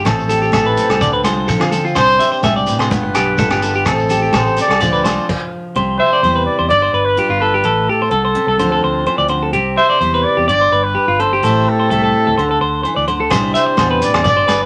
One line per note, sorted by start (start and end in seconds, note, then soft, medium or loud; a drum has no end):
0.00 0.29 G4 medium
0.04 0.51 A1 medium
0.04 0.98 A2 medium
0.04 0.78 C4 medium
0.04 0.28 A4 medium
0.04 1.72 A4 loud
0.04 kick medium
0.04 cross-stick medium
0.04 muted conga soft
0.04 low agogo medium
0.04 shekere medium
0.18 shekere soft
0.28 1.02 G4 medium
0.28 0.41 A4 medium
0.28 closed hi-hat soft
0.28 muted conga soft
0.28 low conga medium
0.28 shekere medium
0.42 0.53 G4 medium
0.42 shekere soft
0.52 0.76 A1 medium
0.52 0.99 A3 medium
0.52 0.99 E4 soft
0.52 0.66 A4 medium
0.52 kick medium
0.52 cross-stick medium
0.52 high conga medium
0.52 low agogo medium
0.52 shekere medium
0.66 0.89 B4 medium
0.66 shekere soft
0.77 0.99 C4 medium
0.77 closed hi-hat soft
0.77 muted conga soft
0.77 shekere medium
0.89 1.00 C2 medium
0.89 1.01 A4 medium
0.89 cross-stick medium
0.89 low agogo medium
0.99 1.24 D2 medium
0.99 1.94 D3 medium
0.99 1.72 C4 medium
0.99 1.13 D5 medium
0.99 kick medium
0.99 muted conga soft
0.99 shekere medium
1.13 1.24 B4 medium
1.23 1.47 C2 medium
1.23 1.48 F4 medium
1.23 1.47 C5 medium
1.23 cross-stick medium
1.23 closed hi-hat soft
1.23 high conga medium
1.23 low agogo medium
1.23 shekere medium
1.48 1.96 F3 medium
1.48 1.94 F4 medium
1.48 1.60 A4 medium
1.48 kick medium
1.48 shekere medium
1.60 1.94 D3 medium
1.60 1.71 F4 medium
1.60 cross-stick medium
1.60 low agogo medium
1.60 shekere soft
1.71 1.94 C4 medium
1.71 1.84 A4 medium
1.71 closed hi-hat soft
1.71 high conga medium
1.71 shekere medium
1.85 1.96 F4 medium
1.85 shekere soft
1.94 2.19 C2 loud
1.94 2.91 C3 medium
1.94 2.89 D4 medium
1.94 2.40 C5 loud
1.94 2.18 C5 medium
1.94 kick medium
1.94 cross-stick medium
1.94 muted conga soft
1.94 low agogo medium
1.94 shekere medium
2.09 shekere soft
2.19 4.09 G4 medium
2.19 2.31 E5 medium
2.19 closed hi-hat soft
2.19 muted conga soft
2.19 shekere medium
2.32 2.43 C5 medium
2.32 shekere soft
2.43 2.66 C2 medium
2.43 2.66 B2 medium
2.43 2.56 E5 medium
2.43 kick medium
2.43 cross-stick medium
2.43 high conga medium
2.43 low agogo medium
2.43 shekere medium
2.56 2.79 D5 medium
2.56 shekere soft
2.66 2.91 A2 medium
2.66 3.89 B4 medium
2.66 closed hi-hat soft
2.66 shekere medium
2.78 2.90 C3 medium
2.78 2.91 C5 medium
2.78 cross-stick medium
2.78 low agogo medium
2.78 shekere soft
2.90 3.14 G1 medium
2.90 3.86 G2 medium
2.90 3.38 G3 soft
2.90 3.63 B3 medium
2.90 3.14 F4 medium
2.90 muted clean electric guitar stroke medium
2.90 kick medium
2.90 muted conga soft
2.90 high conga medium
2.90 shekere medium
3.03 muted clean electric guitar stroke medium
3.15 3.49 B1 medium
3.15 3.39 F4 medium
3.15 3.38 G4 medium
3.15 cross-stick medium
3.15 closed hi-hat soft
3.15 low agogo medium
3.15 shekere medium
3.38 3.84 G3 medium
3.38 3.84 F4 medium
3.38 3.51 A4 medium
3.38 kick medium
3.38 high conga medium
3.38 shekere loud
3.50 3.84 G1 medium
3.50 3.62 G4 medium
3.50 cross-stick medium
3.50 low agogo medium
3.50 shekere soft
3.62 3.84 B3 medium
3.62 3.75 A4 medium
3.62 closed hi-hat soft
3.62 shekere medium
3.74 3.86 G4 medium
3.74 shekere soft
3.85 4.31 A1 medium
3.85 4.34 A2 medium
3.85 4.79 C4 medium
3.85 4.09 A4 medium
3.85 4.39 A4 medium
3.85 kick medium
3.85 cross-stick medium
3.85 muted conga soft
3.85 low agogo medium
3.85 shekere medium
3.98 shekere soft
4.09 4.82 G4 medium
4.09 4.22 A4 medium
4.09 closed hi-hat soft
4.09 muted conga soft
4.09 low conga medium
4.09 shekere medium
4.22 4.32 G4 medium
4.33 4.56 A1 medium
4.33 4.58 B2 medium
4.33 4.43 A4 medium
4.33 kick medium
4.33 cross-stick medium
4.33 high conga medium
4.33 low agogo medium
4.33 shekere medium
4.37 4.59 C5 loud
4.45 4.67 A4 medium
4.45 shekere soft
4.57 4.80 C3 medium
4.57 closed hi-hat medium
4.57 muted conga soft
4.57 shekere medium
4.61 5.50 D5 medium
4.68 4.80 C2 medium
4.68 4.80 A4 medium
4.68 cross-stick medium
4.68 low agogo medium
4.80 5.04 D2 loud
4.80 5.25 D3 medium
4.80 6.23 F3 soft
4.80 5.26 C4 soft
4.80 5.26 F4 medium
4.80 5.04 A4 medium
4.80 4.92 D5 medium
4.80 kick medium
4.80 muted conga soft
4.80 shekere medium
4.93 5.04 B4 medium
4.93 shekere soft
5.04 5.17 C2 medium
5.04 5.26 A4 medium
5.04 5.27 C5 medium
5.04 cross-stick medium
5.04 closed hi-hat soft
5.04 high conga medium
5.04 low agogo medium
5.04 shekere medium
5.29 kick medium
5.29 crash medium
5.76 5.98 C2 medium
5.76 6.70 C3 medium
5.76 5.99 C5 medium
5.98 6.43 C5 loud
5.98 6.12 E5 medium
6.13 6.23 D5 medium
6.23 6.46 E2 loud
6.23 6.68 G3 medium
6.23 6.69 E4 soft
6.23 6.35 C5 medium
6.35 6.58 B4 medium
6.46 6.68 D5 medium
6.59 6.70 E2 medium
6.59 6.70 C5 medium
6.68 6.93 G1 medium
6.68 7.63 G2 medium
6.68 7.07 D5 loud
6.68 6.82 D5 medium
6.82 6.93 C5 medium
6.93 7.16 G1 medium
6.93 7.17 B4 medium
7.05 7.40 B4 medium
7.17 7.62 G3 medium
7.17 7.63 F4 medium
7.17 7.30 G4 medium
7.29 7.63 G1 medium
7.29 7.41 F4 medium
7.40 7.54 A4 medium
7.40 7.91 B4 medium
7.54 7.65 G4 medium
7.64 7.87 A1 medium
7.64 8.11 A2 medium
7.64 7.88 A4 medium
7.89 8.01 G4 medium
7.89 9.31 A4 medium
8.02 8.11 C5 medium
8.11 8.34 C2 loud
8.11 8.35 B2 medium
8.11 8.24 A4 medium
8.25 8.47 C5 medium
8.35 8.59 C3 medium
8.47 8.58 C2 medium
8.47 8.59 A4 medium
8.58 8.81 D2 loud
8.58 9.06 D3 medium
8.58 9.54 F3 medium
8.58 9.52 C4 medium
8.58 9.53 F4 medium
8.58 8.71 C5 medium
8.72 8.83 A4 medium
8.83 9.06 D2 medium
8.83 9.06 C5 medium
9.06 9.28 E3 medium
9.06 9.18 C5 medium
9.18 9.52 D2 medium
9.18 9.29 D5 medium
9.28 9.53 D3 medium
9.28 9.42 C5 medium
9.43 9.53 A4 medium
9.53 9.76 C2 loud
9.53 10.48 C3 medium
9.53 9.76 G4 medium
9.77 10.25 C5 loud
9.77 9.89 E5 medium
9.90 10.00 D5 medium
10.01 10.23 E2 loud
10.01 10.46 G3 medium
10.01 10.46 E4 medium
10.01 10.13 C5 medium
10.14 10.36 B4 medium
10.23 10.48 D5 loud
10.37 10.48 E2 medium
10.37 10.48 G4 medium
10.48 10.71 G1 loud
10.48 11.19 G2 medium
10.48 10.60 D5 medium
10.48 10.85 D5 loud
10.61 10.72 C5 medium
10.72 10.95 G1 medium
10.72 10.95 B4 medium
10.84 11.22 B4 loud
10.95 11.07 G4 medium
11.08 11.41 G1 medium
11.08 11.19 F4 medium
11.20 11.42 G2 medium
11.20 11.31 A4 medium
11.20 11.71 C5 loud
11.33 11.43 G4 medium
11.43 11.65 A1 medium
11.43 12.34 A2 medium
11.43 11.90 A3 medium
11.43 12.35 C4 medium
11.43 11.91 E4 medium
11.43 12.39 G4 medium
11.43 11.66 A4 medium
11.69 13.09 A4 loud
11.80 11.90 C5 medium
11.90 12.13 C2 medium
11.90 12.35 A3 medium
11.90 12.35 E4 medium
11.90 12.02 A4 medium
12.04 12.25 A4 medium
12.27 12.37 D2 medium
12.27 12.37 A4 medium
12.37 12.60 D2 medium
12.37 12.85 D3 medium
12.37 12.49 C5 medium
12.51 12.61 A4 medium
12.61 12.83 D2 medium
12.61 12.82 C5 medium
12.83 13.07 E3 medium
12.83 12.96 C5 medium
12.96 13.30 D2 medium
12.96 13.07 D5 medium
13.08 13.31 D3 medium
13.08 13.20 C5 medium
13.20 13.31 A4 medium
13.30 13.54 C2 medium
13.30 14.26 C3 medium
13.30 14.23 G3 medium
13.30 14.24 D4 medium
13.30 14.24 E4 medium
13.30 13.54 C5 medium
13.30 kick medium
13.30 cross-stick medium
13.30 muted conga soft
13.30 low agogo medium
13.30 shekere medium
13.35 14.66 G4 medium
13.54 14.05 C5 loud
13.54 13.66 E5 medium
13.54 closed hi-hat soft
13.54 shekere medium
13.66 muted clean electric guitar stroke medium
13.77 14.01 E2 loud
13.77 14.02 B2 medium
13.77 13.90 C5 medium
13.77 kick medium
13.77 cross-stick medium
13.77 high conga loud
13.77 low agogo medium
13.77 shekere medium
13.91 14.13 B4 medium
14.01 14.24 A2 medium
14.01 14.26 D5 medium
14.01 closed hi-hat medium
14.01 muted conga soft
14.01 shekere medium
14.14 14.24 E2 medium
14.14 14.24 C5 medium
14.14 cross-stick medium
14.14 low agogo medium
14.24 14.48 G1 loud
14.24 14.66 G2 medium
14.24 14.36 D5 medium
14.24 kick medium
14.24 muted conga soft
14.24 shekere medium
14.29 14.61 D5 loud
14.37 14.47 C5 medium
14.48 14.66 G1 medium
14.48 14.66 B4 medium
14.48 cross-stick medium
14.48 closed hi-hat soft
14.48 muted conga soft
14.48 high conga medium
14.48 low agogo medium
14.48 shekere medium